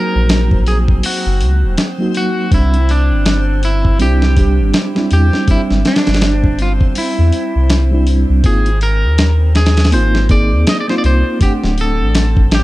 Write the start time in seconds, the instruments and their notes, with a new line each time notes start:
Already playing: reed electric piano F#3 A#3 D#4 F#4, synth texture C4 C5, clean electric guitar A#4
0.15 sub bass A#1
0.29 snare, open hi-hat
0.51 kick
0.67 clean electric guitar G#4, open hi-hat
0.88 kick
1.03 clean electric guitar F#4, open hi-hat
1.26 sub bass F#1
1.41 sub bass C#2, open hi-hat
1.63 sub bass D#1
1.78 snare, open hi-hat
1.98 reed electric piano F#3 A#3 D#4 F#4
2.15 clean electric guitar F#4, open hi-hat
2.51 sub bass C2, reed electric piano G3 C4 D4 E4, clean electric guitar E4, kick, open hi-hat
2.74 closed hi-hat
2.89 clean electric guitar D4, open hi-hat
3.11 sub bass G1
3.26 snare, open hi-hat
3.63 clean electric guitar E4, open hi-hat
3.85 kick
3.99 sub bass C2, reed electric piano G3 C4 D4 E4, clean electric guitar G4, open hi-hat
4.22 snare
4.36 reed electric piano G3 C4 D4 G4, kick, open hi-hat
4.59 sub bass G1
4.74 snare, open hi-hat
4.95 reed electric piano G3 C4 D4 E4, snare
5.11 sub bass E2, clean electric guitar G4, open hi-hat
5.33 snare
5.45 reed electric piano G3 C4, kick, open hi-hat
5.50 reed electric piano D4 E5, clean electric guitar E4
5.70 sub bass G1, snare
5.85 clean electric guitar D4, snare, open hi-hat
5.96 snare, open hi-hat
6.07 sub bass G1, snare, open hi-hat
6.14 snare, open hi-hat
6.21 snare, open hi-hat
6.44 kick
6.59 clean electric guitar F4, open hi-hat
6.81 kick
6.95 clean electric guitar E4, open hi-hat
7.18 sub bass E2
7.32 open hi-hat
7.55 sub bass C2
7.70 snare, open hi-hat
7.91 reed electric piano G3 C4 D4 E4
8.07 open hi-hat
8.29 sub bass C2
8.43 sub bass G#1, reed electric piano A#3 C4 D#4 F4, clean electric guitar G#4, kick, open hi-hat
8.66 closed hi-hat
8.81 clean electric guitar A#4, open hi-hat
9.04 sub bass D#2
9.18 snare, open hi-hat
9.55 clean electric guitar G#4, snare, open hi-hat
9.66 snare, open hi-hat
9.77 snare, open hi-hat
9.84 snare, open hi-hat
9.91 sub bass G#1, reed electric piano A#3 C4 D#4 F4, clean electric guitar C5, open hi-hat
10.15 snare
10.29 reed electric piano A#3 C4 D#4 G#4, clean electric guitar D5, kick, open hi-hat
10.52 sub bass D#2
10.67 clean electric guitar D#5, snare, open hi-hat
10.80 clean electric guitar D5
10.88 reed electric piano A#3 C4 D#4 F4, clean electric guitar C5, snare
10.98 clean electric guitar D5
11.04 sub bass C2, clean electric guitar C5, open hi-hat
11.39 reed electric piano A3 C4, clean electric guitar G4, kick, open hi-hat
11.43 reed electric piano D4 F#5
11.63 sub bass D1, snare
11.78 clean electric guitar A4, open hi-hat
12.00 sub bass A1
12.15 snare, open hi-hat
12.37 kick
12.51 clean electric guitar G4, snare, open hi-hat